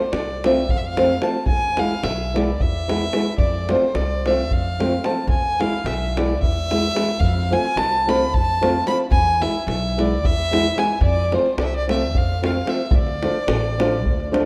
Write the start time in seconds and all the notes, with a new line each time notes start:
Already playing: C5
0.12 C2 D5, davul high
0.44 F3 A3 C4 F4 E5, davul high
0.69 F2 F5, davul low
0.77 E5
0.87 F5
0.97 F3 A3 C4 F4, davul high
1.21 F3 A3 C4 F4 A5, davul high
1.46 E2 G#5, davul low
1.77 E3 G#3 B3 E4 F5, davul high
1.91 davul high
2.03 B1 E5, davul high
2.34 E3 G#3 B3 E4 D5, davul high
2.60 E2 E5, davul low
2.88 E3 G#3 B3 E4, davul high
3.13 E3 G#3 B3 E4, davul high
3.38 F2 D5, davul low
3.69 F3 A3 C4 F4 C5, davul high
3.82 davul high
3.94 C2 D5, davul high
4.26 F3 A3 C4 F4 E5, davul high
4.50 F2 F5, davul low
4.79 F3 A3 C4 F4, davul high
5.04 F3 A3 C4 F4 A5, davul high
5.27 E2 G#5, davul low
5.59 E3 G#3 B3 E4 F5, davul high
5.73 davul high
5.84 B1 E5, davul high
6.02 davul high
6.17 E3 G#3 B3 E4 D5, davul high
6.30 davul high
6.42 E2 E5, davul low
6.71 E3 G#3 B3 E4, davul high
6.84 davul high
6.95 E3 G#3 B3 E4, davul high
7.08 davul high
7.19 F2 F5, davul low
7.50 F3 A3 C4 F4 G#5, davul high
7.65 davul high
7.76 C2 A5, davul high
8.07 F3 A3 C4 F4 B5, davul high
8.33 F2 A5, davul low
8.61 F3 A3 C4 F4, davul high
8.85 F3 A3 C4 F4 B5, davul high
9.11 E2 G#5, davul low
9.40 E3 G#3 B3 E4 E5, davul high
9.55 davul high
9.67 B1 E5, davul high
9.97 E3 G#3 B3 E4 D5, davul high
10.23 E2 E5, davul low
10.51 E3 G#3 B3 E4, davul high
10.76 E3 G#3 B3 E4 G#5, davul high
11.01 F2 D5, davul low
11.32 F3 A3 C4 F4 C5, davul high
11.46 davul high
11.57 C2 D5, davul high
11.65 E5
11.74 D5
11.88 F3 A3 C4 F4 E5, davul high
12.13 F2 F5, davul low
12.42 F3 A3 C4 F4 F5, davul high
12.65 F3 A3 C4 F4 E5, davul high
12.85 E5
12.91 D2 D5, davul low
13.07 davul high
13.22 F3 A3 D4 F4, davul high
13.35 davul high
13.48 A1, davul high
13.64 davul high
13.78 F3 A3 D4 F4, davul high
14.06 D2, davul low
14.20 davul high
14.32 F3 A3 D4 F4, davul high